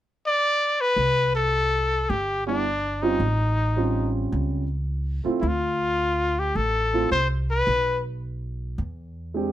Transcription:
0.26 D5
0.81 B4
0.96 C2
1.35 A4
2.10 G1 G4
2.46 G3 B3 D4 E4
3.02 G3 C4 C#4 D#4 F4
3.20 A1
3.76 G3 C4 C#4 F4
4.32 C#2
5.24 A3 C4 E4 F4, muted upright bass stroke
5.40 D2 E4
5.48 F4
6.39 G4
6.55 A1 A4
6.93 A3 C4 E4 F4
7.11 C2 C5
7.51 B4
7.67 B1
8.78 E2
9.34 G#3 C4 D4 G4

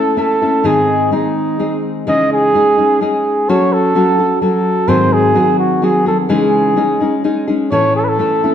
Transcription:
Already playing: A3 C#4 E4 A4
0.17 A3 C#4 E4 A4
0.42 A3 C#4 E4 A4
0.64 G#2 D#3 G#3 C4 D#4 G#4
1.11 G#3 C4 D#4 G#4
1.59 G#3 C4 D#4 G#4
2.07 C#3 E3 G#3 C#4 D#4 G#4 D#5
2.33 G#4
2.54 G#3 C#4 D#4 G#4
2.78 G#3 C#4 D#4 G#4
3.01 G#3 C#4 D#4 G#4
3.49 F#3 C#4 F#4 A4 C#5
3.73 A4
3.95 F#3 C#4 F#4 A4
4.19 C#4 F#4 A4
4.42 F#3 C#4 F#4 A4
4.88 G#2 D#3 F#3 C4 F#4 G#4 C5
5.13 G#4
5.35 F#3 C4 F#4 G#4
5.60 F#4
5.82 F#3 C4 F#4 G#4
6.06 F#3 C4 F#4 G#4 A4
6.29 C#3 E3 G#3 C#4 D#4 G#4
6.76 G#3 C#4 D#4 G#4
7.00 G#3 C#4 D#4 G#4
7.24 G#3 C#4 D#4 G#4
7.48 G#3 C#4 D#4 G#4
7.71 A2 E3 A3 C#4 E4 A4 C#5
7.96 A4
8.04 B4
8.09 A4
8.19 A3 C#4 E4 A4
8.44 A3 C#4 E4 A4

